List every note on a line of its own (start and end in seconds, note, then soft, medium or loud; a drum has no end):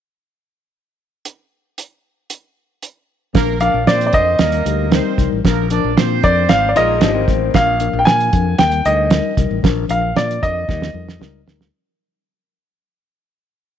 1.25 closed hi-hat medium
1.78 closed hi-hat medium
2.30 closed hi-hat medium
2.82 closed hi-hat soft
3.34 3.69 A#1 medium
3.34 3.55 F3 loud
3.34 3.56 A#3 loud
3.34 3.55 D4 medium
3.34 3.56 A#4 loud
3.34 3.55 A#4 loud
3.34 kick medium
3.34 snare loud
3.34 closed hi-hat medium
3.60 3.81 F3 medium
3.60 3.82 D4 medium
3.60 3.81 D4 medium
3.60 3.82 A#4 medium
3.60 3.81 D5 medium
3.60 3.88 F5 medium
3.60 closed hi-hat medium
3.74 3.85 A#1 medium
3.86 4.10 A#2 medium
3.86 4.07 F3 medium
3.86 4.36 C4 medium
3.86 4.08 D4 medium
3.86 4.08 A#4 medium
3.86 4.36 C5 loud
3.86 4.05 D5 medium
3.86 snare loud
3.86 closed hi-hat medium
4.01 closed hi-hat medium
4.07 4.14 D5 medium
4.12 4.36 F2 medium
4.12 4.33 F3 medium
4.12 4.34 D4 medium
4.12 4.34 A#4 medium
4.12 5.15 D#5 medium
4.12 kick medium
4.12 closed hi-hat medium
4.39 4.62 D#2 medium
4.39 4.60 G3 medium
4.39 4.89 A#3 medium
4.39 4.60 D#4 medium
4.39 4.89 A#4 medium
4.39 4.61 A#4 medium
4.39 snare loud
4.39 closed hi-hat medium
4.52 closed hi-hat soft
4.65 4.99 D2 medium
4.65 4.85 G3 medium
4.65 4.86 D#4 medium
4.65 4.86 G4 medium
4.65 closed hi-hat medium
4.91 5.12 G3 loud
4.91 5.29 C4 medium
4.91 5.12 D#4 medium
4.91 5.12 A#4 loud
4.91 5.30 C5 medium
4.91 snare loud
4.91 closed hi-hat medium
5.17 5.29 C2 medium
5.17 5.38 G3 medium
5.17 5.38 D#4 medium
5.17 5.39 A#4 medium
5.17 kick medium
5.17 snare soft
5.17 closed hi-hat medium
5.32 5.43 A1 medium
5.44 5.78 A#1 medium
5.44 5.65 F3 loud
5.44 5.66 A#3 medium
5.44 5.65 D4 medium
5.44 5.66 A#4 medium
5.44 5.66 A#4 loud
5.44 kick medium
5.44 snare medium
5.44 closed hi-hat medium
5.70 5.91 F3 loud
5.70 5.92 D4 medium
5.70 5.91 D4 medium
5.70 5.92 A#4 loud
5.70 5.92 D5 medium
5.70 closed hi-hat medium
5.84 5.95 A#1 medium
5.97 6.20 A#2 medium
5.97 6.17 F3 medium
5.97 6.72 C4 medium
5.97 6.17 D4 medium
5.97 6.72 C5 loud
5.97 6.18 C5 medium
5.97 snare loud
5.97 closed hi-hat medium
6.22 6.46 F2 medium
6.22 6.43 F3 medium
6.22 6.43 D4 medium
6.22 6.43 A#4 medium
6.22 6.50 D5 medium
6.22 kick medium
6.22 closed hi-hat medium
6.48 6.73 G#1 medium
6.48 6.69 G#3 medium
6.48 6.69 D#4 medium
6.48 6.70 C5 medium
6.48 6.69 F5 loud
6.48 snare loud
6.48 closed hi-hat medium
6.69 6.76 D5 medium
6.75 6.99 A#1 medium
6.75 6.95 G#3 medium
6.75 7.01 G#3 medium
6.75 7.25 A#3 medium
6.75 6.96 D#4 medium
6.75 7.01 F4 medium
6.75 6.96 F4 medium
6.75 7.26 A#4 medium
6.75 7.25 D#5 medium
6.75 closed hi-hat medium
7.01 7.24 G#1 medium
7.01 7.15 F3 medium
7.01 7.22 G#3 medium
7.01 7.14 D4 medium
7.01 7.23 D#4 medium
7.01 7.23 G4 medium
7.01 snare loud
7.01 closed hi-hat medium
7.14 7.52 D#3 medium
7.14 7.52 C4 medium
7.28 7.50 A1 medium
7.28 7.48 G#3 medium
7.28 7.49 D#4 medium
7.28 7.49 C5 medium
7.28 kick medium
7.28 snare soft
7.28 closed hi-hat medium
7.54 7.88 A#1 loud
7.54 7.74 F3 medium
7.54 7.75 D4 medium
7.54 7.75 A#4 medium
7.54 8.02 F5 medium
7.54 kick medium
7.54 snare medium
7.54 closed hi-hat medium
7.80 8.00 F3 medium
7.80 8.01 D4 medium
7.80 8.01 A#4 medium
7.80 closed hi-hat medium
7.93 8.05 A#1 medium
7.99 8.06 G5 medium
8.05 8.29 A#2 medium
8.05 8.27 F3 medium
8.05 8.27 D4 medium
8.05 8.28 A#4 medium
8.05 8.60 G#5 loud
8.05 snare loud
8.05 closed hi-hat medium
8.20 closed hi-hat medium
8.33 8.55 F2 medium
8.33 8.53 F3 medium
8.33 8.53 D4 medium
8.33 8.54 A#4 medium
8.33 kick medium
8.33 closed hi-hat medium
8.58 8.81 D#2 medium
8.58 8.80 G3 medium
8.58 8.80 D#4 medium
8.58 8.80 A#4 medium
8.58 8.86 G5 loud
8.58 snare loud
8.58 closed hi-hat medium
8.72 closed hi-hat soft
8.85 9.19 D2 medium
8.85 9.06 G3 medium
8.85 9.06 D#4 medium
8.85 9.07 A#4 medium
8.85 9.34 D#5 medium
8.85 closed hi-hat medium
9.10 9.31 G3 medium
9.10 9.32 D#4 medium
9.10 9.32 A#4 loud
9.10 snare loud
9.10 closed hi-hat medium
9.37 9.49 C2 medium
9.37 9.58 G3 medium
9.37 9.58 D#4 medium
9.37 9.59 A#4 medium
9.37 kick medium
9.37 snare soft
9.37 closed hi-hat medium
9.51 9.62 A1 medium
9.63 9.86 A#1 medium
9.63 9.84 F3 loud
9.63 9.84 D4 medium
9.63 9.84 A#4 loud
9.63 kick medium
9.63 snare loud
9.63 closed hi-hat medium
9.88 10.12 A#1 medium
9.88 10.09 F3 medium
9.88 10.10 D4 medium
9.88 10.17 F5 medium
9.88 closed hi-hat medium
10.16 10.38 A#2 medium
10.16 10.37 F3 medium
10.16 10.37 D4 medium
10.16 10.37 A#4 medium
10.16 10.44 D5 medium
10.16 snare loud
10.16 closed hi-hat medium
10.31 closed hi-hat medium
10.41 10.65 F2 medium
10.41 10.62 F3 medium
10.41 10.62 D4 medium
10.41 10.63 A#4 medium
10.41 11.43 D#5 medium
10.41 kick medium
10.41 closed hi-hat medium
10.68 10.91 D#2 medium
10.68 10.88 G3 medium
10.68 10.89 D#4 medium
10.68 10.89 A#4 medium
10.68 kick medium
10.68 snare medium
10.82 snare medium
10.93 11.17 F2 medium
10.93 11.14 G3 medium
10.93 11.15 D#4 medium
10.93 11.15 A#4 medium
11.09 snare medium
11.19 11.43 C#2 medium
11.19 11.40 G3 loud
11.19 11.40 D#4 medium
11.19 11.41 A#4 loud
11.19 snare medium
11.46 11.69 D2 medium
11.46 11.67 D#4 medium
11.46 11.68 A#4 medium
11.46 snare medium
11.61 snare medium